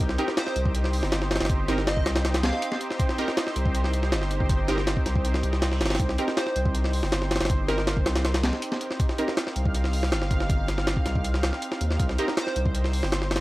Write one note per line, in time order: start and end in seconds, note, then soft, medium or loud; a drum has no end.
0.00 0.17 C2 medium
0.00 13.40 C4 medium
0.00 13.40 D#4 medium
0.00 13.40 G4 medium
0.00 5.98 C5 medium
0.09 snare soft
0.18 0.29 C4 medium
0.18 0.29 D#4 medium
0.18 0.29 G4 medium
0.18 0.29 A#4 loud
0.18 closed hi-hat medium
0.28 snare medium
0.37 0.60 C5 loud
0.37 snare loud
0.37 closed hi-hat medium
0.47 snare soft
0.56 1.02 C2 loud
0.56 closed hi-hat medium
0.65 kick loud
0.75 closed hi-hat medium
0.84 snare soft
0.93 open hi-hat medium
1.03 1.39 G1 loud
1.03 snare medium
1.12 snare loud
1.12 closed hi-hat medium
1.22 snare soft
1.31 snare medium
1.31 closed hi-hat medium
1.36 snare medium
1.36 closed hi-hat medium
1.40 2.05 G1 loud
1.40 snare medium
1.40 closed hi-hat medium
1.45 snare medium
1.45 closed hi-hat medium
1.50 kick loud
1.50 closed hi-hat medium
1.68 1.79 C4 medium
1.68 1.79 D#4 medium
1.68 1.79 G4 medium
1.68 1.79 A#4 loud
1.68 snare medium
1.68 closed hi-hat medium
1.78 snare medium
1.87 2.10 D#5 medium
1.87 snare loud
1.87 closed hi-hat medium
1.97 kick loud
2.06 2.52 C2 loud
2.06 snare loud
2.06 closed hi-hat medium
2.16 snare loud
2.16 closed hi-hat medium
2.25 snare loud
2.25 closed hi-hat medium
2.34 snare loud
2.34 closed hi-hat medium
2.43 2.81 F5 loud
2.43 snare loud
2.43 closed hi-hat medium
2.53 snare soft
2.62 closed hi-hat medium
2.72 snare medium
2.81 closed hi-hat medium
2.91 snare soft
3.00 kick loud
3.00 closed hi-hat medium
3.09 snare soft
3.18 3.29 C4 medium
3.18 3.29 D#4 medium
3.18 3.29 G4 medium
3.18 3.29 A#4 medium
3.18 closed hi-hat medium
3.28 snare medium
3.37 snare loud
3.37 closed hi-hat medium
3.47 snare soft
3.56 4.14 C2 loud
3.56 closed hi-hat medium
3.65 kick loud
3.75 closed hi-hat medium
3.84 snare soft
3.93 closed hi-hat medium
4.03 snare soft
4.12 4.95 G1 loud
4.12 snare loud
4.12 closed hi-hat medium
4.22 snare soft
4.31 closed hi-hat medium
4.40 kick medium
4.49 kick loud
4.49 closed hi-hat medium
4.68 4.79 C4 medium
4.68 4.79 D#4 medium
4.68 4.79 G4 medium
4.68 4.79 A#4 loud
4.68 snare medium
4.68 closed hi-hat medium
4.78 snare medium
4.87 snare loud
4.87 closed hi-hat medium
4.97 kick loud
5.06 5.43 C2 loud
5.06 snare medium
5.06 closed hi-hat medium
5.15 kick loud
5.25 closed hi-hat medium
5.25 reverse cymbal medium
5.34 snare medium
5.43 5.82 C2 loud
5.43 closed hi-hat medium
5.53 snare soft
5.62 snare loud
5.62 closed hi-hat medium
5.72 snare soft
5.81 5.98 G1 loud
5.81 snare medium
5.81 closed hi-hat medium
5.86 snare medium
5.86 closed hi-hat medium
5.90 snare medium
5.90 closed hi-hat medium
5.95 snare medium
5.95 closed hi-hat medium
6.00 6.17 C2 loud
6.00 8.99 C5 medium
6.00 kick loud
6.00 closed hi-hat medium
6.09 snare soft
6.18 6.29 C4 medium
6.18 6.29 D#4 medium
6.18 6.29 G4 medium
6.18 6.29 A#4 loud
6.18 closed hi-hat medium
6.28 snare medium
6.37 6.60 C5 medium
6.37 snare loud
6.37 closed hi-hat medium
6.47 snare soft
6.56 7.01 C2 loud
6.56 closed hi-hat medium
6.65 kick loud
6.75 closed hi-hat medium
6.84 snare soft
6.93 open hi-hat medium
7.03 7.39 G1 loud
7.03 snare medium
7.12 snare loud
7.12 closed hi-hat medium
7.22 snare soft
7.31 snare medium
7.31 closed hi-hat medium
7.36 snare medium
7.36 closed hi-hat medium
7.40 8.04 G1 medium
7.40 snare medium
7.40 closed hi-hat medium
7.45 snare medium
7.45 closed hi-hat medium
7.50 kick loud
7.50 closed hi-hat medium
7.68 7.79 C4 medium
7.68 7.79 D#4 medium
7.68 7.79 G4 medium
7.68 7.97 A#4 medium
7.68 7.79 A#4 loud
7.68 snare medium
7.68 closed hi-hat medium
7.78 snare medium
7.87 snare loud
7.87 closed hi-hat medium
7.97 kick loud
8.06 8.51 C2 loud
8.06 snare loud
8.06 closed hi-hat medium
8.16 snare loud
8.16 closed hi-hat medium
8.25 snare loud
8.25 closed hi-hat medium
8.34 snare loud
8.34 closed hi-hat medium
8.44 snare loud
8.44 closed hi-hat medium
8.53 snare soft
8.62 closed hi-hat medium
8.72 snare medium
8.81 closed hi-hat medium
8.91 snare soft
9.00 11.99 F5 medium
9.00 kick loud
9.00 closed hi-hat medium
9.09 snare soft
9.18 9.29 C4 medium
9.18 9.29 D#4 medium
9.18 9.29 G4 medium
9.18 9.29 A#4 loud
9.18 closed hi-hat medium
9.28 snare medium
9.37 snare loud
9.37 closed hi-hat medium
9.47 snare soft
9.56 10.14 C2 loud
9.56 closed hi-hat medium
9.65 kick loud
9.75 closed hi-hat medium
9.84 snare soft
9.93 open hi-hat medium
10.03 snare medium
10.12 10.95 G1 loud
10.12 snare loud
10.12 closed hi-hat medium
10.22 snare soft
10.31 kick loud
10.31 closed hi-hat medium
10.40 snare medium
10.50 kick loud
10.50 closed hi-hat medium
10.68 snare medium
10.68 closed hi-hat medium
10.78 snare medium
10.87 snare loud
10.87 closed hi-hat medium
10.97 kick loud
11.06 11.52 C2 loud
11.06 snare soft
11.06 closed hi-hat medium
11.15 kick loud
11.24 closed hi-hat medium
11.34 snare medium
11.43 snare loud
11.43 closed hi-hat medium
11.53 snare soft
11.62 closed hi-hat medium
11.72 snare medium
11.81 11.98 D#2 loud
11.81 closed hi-hat medium
11.91 snare soft
12.00 12.17 C2 loud
12.00 13.40 C5 medium
12.00 kick loud
12.00 closed hi-hat medium
12.09 snare soft
12.18 12.29 C4 medium
12.18 12.29 D#4 medium
12.18 12.29 G4 medium
12.18 12.29 A#4 loud
12.18 closed hi-hat medium
12.28 snare medium
12.37 12.60 C5 loud
12.37 snare loud
12.37 closed hi-hat medium
12.47 snare soft
12.56 13.02 C2 loud
12.56 closed hi-hat medium
12.65 kick loud
12.75 closed hi-hat medium
12.84 snare soft
12.93 open hi-hat medium
13.03 13.39 G1 loud
13.03 snare medium
13.12 snare loud
13.12 closed hi-hat medium
13.22 snare soft
13.31 snare medium
13.31 closed hi-hat medium
13.36 snare medium
13.36 closed hi-hat medium